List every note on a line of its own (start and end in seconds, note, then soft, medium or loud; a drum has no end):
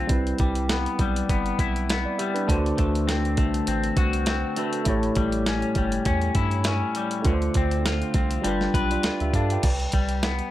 0.00 0.10 D3 medium
0.00 0.71 C4 medium
0.00 0.16 F4 medium
0.00 0.16 A4 soft
0.07 0.34 C2 loud
0.07 2.43 G3 medium
0.07 2.43 C4 medium
0.07 1.56 E4 medium
0.07 kick medium
0.07 closed hi-hat medium
0.12 1.57 B4 medium
0.27 closed hi-hat soft
0.38 0.87 C2 medium
0.38 0.99 G3 medium
0.38 kick medium
0.38 closed hi-hat medium
0.55 closed hi-hat soft
0.69 1.29 B3 medium
0.69 snare loud
0.69 closed hi-hat medium
0.86 closed hi-hat soft
0.99 1.23 B1 medium
0.99 2.19 G3 medium
0.99 kick medium
0.99 closed hi-hat medium
1.16 closed hi-hat medium
1.29 1.53 G1 medium
1.29 1.89 B3 medium
1.29 kick medium
1.29 closed hi-hat medium
1.46 closed hi-hat soft
1.59 2.06 B1 medium
1.59 2.55 E4 medium
1.59 kick medium
1.59 closed hi-hat medium
1.76 closed hi-hat soft
1.90 2.55 B3 medium
1.90 snare loud
1.90 closed hi-hat medium
2.05 2.18 D5 medium
2.18 2.55 G3 medium
2.18 2.34 G4 medium
2.18 2.34 E5 medium
2.18 closed hi-hat medium
2.34 2.47 D4 medium
2.34 2.63 B4 medium
2.34 closed hi-hat soft
2.47 2.72 D2 loud
2.47 4.86 D3 medium
2.47 4.52 A3 medium
2.47 4.53 D4 medium
2.47 4.53 F#4 medium
2.47 kick loud
2.47 closed hi-hat medium
2.52 4.54 C5 medium
2.66 closed hi-hat soft
2.78 3.39 D2 loud
2.78 3.37 A3 medium
2.78 kick medium
2.78 closed hi-hat medium
2.95 closed hi-hat soft
3.07 3.67 C4 medium
3.07 snare loud
3.07 closed hi-hat medium
3.25 closed hi-hat soft
3.37 3.61 C2 medium
3.37 4.57 A3 medium
3.37 kick medium
3.37 closed hi-hat medium
3.54 closed hi-hat medium
3.67 3.91 A1 medium
3.67 4.26 C4 medium
3.67 closed hi-hat medium
3.84 closed hi-hat soft
3.97 4.45 C2 medium
3.97 4.93 F#4 medium
3.97 kick medium
3.97 closed hi-hat medium
4.13 closed hi-hat soft
4.26 4.93 C4 medium
4.26 snare loud
4.26 closed hi-hat medium
4.56 4.83 A3 medium
4.56 5.17 A3 medium
4.56 4.86 D4 soft
4.56 4.87 F#4 soft
4.56 4.87 B4 medium
4.56 closed hi-hat medium
4.73 closed hi-hat soft
4.84 5.10 A1 loud
4.84 7.25 A2 medium
4.84 7.20 A3 medium
4.84 7.21 E4 medium
4.84 7.22 G4 medium
4.84 kick medium
4.84 closed hi-hat medium
4.89 7.22 C#5 medium
5.03 closed hi-hat soft
5.15 5.64 A1 medium
5.15 5.76 G3 medium
5.15 kick medium
5.15 closed hi-hat medium
5.32 closed hi-hat soft
5.46 6.05 C#4 medium
5.46 snare loud
5.46 closed hi-hat medium
5.62 closed hi-hat soft
5.75 6.00 G1 medium
5.75 6.95 G3 medium
5.75 kick medium
5.75 closed hi-hat medium
5.92 closed hi-hat medium
6.05 6.30 E2 medium
6.05 6.66 C#4 medium
6.05 kick medium
6.05 closed hi-hat medium
6.22 closed hi-hat soft
6.35 6.83 G2 medium
6.35 7.32 E4 medium
6.35 kick medium
6.35 closed hi-hat medium
6.51 closed hi-hat soft
6.64 7.32 C#4 medium
6.64 snare loud
6.64 closed hi-hat medium
6.95 7.32 G3 medium
6.95 closed hi-hat medium
7.11 closed hi-hat soft
7.22 7.49 D2 loud
7.22 8.40 A3 medium
7.22 8.41 D4 medium
7.22 8.42 F4 medium
7.22 kick medium
7.22 closed hi-hat medium
7.26 8.51 D3 medium
7.26 7.33 B4 medium
7.33 8.46 C5 medium
7.42 closed hi-hat soft
7.54 8.03 D2 loud
7.54 8.14 C4 medium
7.54 kick medium
7.54 closed hi-hat medium
7.71 closed hi-hat soft
7.86 8.51 F4 medium
7.86 snare loud
7.86 closed hi-hat medium
8.02 closed hi-hat soft
8.14 8.38 C2 medium
8.14 8.51 C4 medium
8.14 kick medium
8.14 closed hi-hat medium
8.31 closed hi-hat medium
8.41 8.69 G1 medium
8.41 9.60 G3 medium
8.41 9.93 G3 medium
8.41 9.61 D4 medium
8.41 8.74 F4 medium
8.41 closed hi-hat medium
8.47 8.75 B4 medium
8.61 snare soft
8.74 8.98 B1 medium
8.74 10.51 B4 medium
8.74 kick medium
8.74 closed hi-hat medium
8.91 9.20 F4 soft
8.91 9.19 D5 medium
8.91 closed hi-hat soft
9.03 9.11 D2 soft
9.03 9.70 F4 medium
9.03 snare loud
9.03 closed hi-hat medium
9.20 9.31 D2 medium
9.20 9.34 G4 medium
9.20 9.34 E5 medium
9.20 closed hi-hat soft
9.33 9.57 G2 loud
9.33 9.71 D4 medium
9.33 9.50 A4 medium
9.33 9.50 F5 medium
9.33 kick medium
9.33 closed hi-hat medium
9.50 9.80 B4 medium
9.50 9.80 G5 medium
9.50 closed hi-hat soft
9.63 9.87 C2 loud
9.63 kick loud
9.63 closed hi-hat medium
9.63 crash medium
9.80 closed hi-hat soft
9.92 10.41 C2 medium
9.92 10.51 G3 medium
9.92 kick medium
9.92 closed hi-hat medium
10.09 closed hi-hat soft
10.23 10.51 B3 medium
10.23 snare loud
10.23 closed hi-hat medium
10.39 closed hi-hat soft